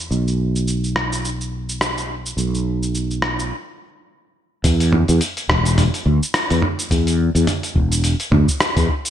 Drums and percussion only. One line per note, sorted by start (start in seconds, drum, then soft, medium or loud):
0.12 shaker soft
0.28 shaker soft
0.56 shaker medium
0.68 shaker soft
0.84 shaker soft
0.96 cross-stick medium
1.13 shaker medium
1.25 shaker medium
1.41 shaker soft
1.69 shaker medium
1.81 cross-stick medium
1.81 shaker medium
1.98 shaker soft
2.26 shaker medium
2.38 shaker soft
2.55 shaker soft
2.83 shaker medium
2.95 shaker soft
3.11 shaker soft
3.22 cross-stick medium
3.39 shaker medium
4.64 kick loud
4.64 open hi-hat medium
4.64 shaker medium
4.80 open hi-hat medium
4.80 shaker soft
4.93 mid tom medium
5.08 open hi-hat soft
5.08 shaker medium
5.21 open hi-hat medium
5.21 shaker medium
5.37 open hi-hat soft
5.37 shaker soft
5.49 kick loud
5.49 cross-stick medium
5.65 open hi-hat soft
5.65 shaker medium
5.78 mid tom medium
5.78 open hi-hat medium
5.78 shaker medium
5.94 open hi-hat soft
5.94 shaker soft
6.23 shaker medium
6.34 cross-stick medium
6.34 open hi-hat medium
6.34 shaker medium
6.50 open hi-hat soft
6.50 shaker soft
6.62 mid tom medium
6.79 open hi-hat soft
6.79 shaker medium
6.91 kick loud
6.91 open hi-hat medium
6.91 shaker medium
7.07 open hi-hat soft
7.07 shaker soft
7.35 open hi-hat soft
7.35 shaker medium
7.47 mid tom medium
7.47 open hi-hat medium
7.47 shaker medium
7.63 open hi-hat soft
7.63 shaker soft
7.75 kick loud
7.92 open hi-hat soft
7.92 shaker medium
8.04 open hi-hat medium
8.04 shaker medium
8.20 open hi-hat soft
8.20 shaker soft
8.32 mid tom medium
8.48 kick medium
8.48 shaker medium
8.60 cross-stick medium
8.60 open hi-hat medium
8.60 shaker medium
8.77 kick loud
8.77 open hi-hat soft
8.77 shaker soft
8.89 kick medium
9.05 open hi-hat soft
9.05 shaker medium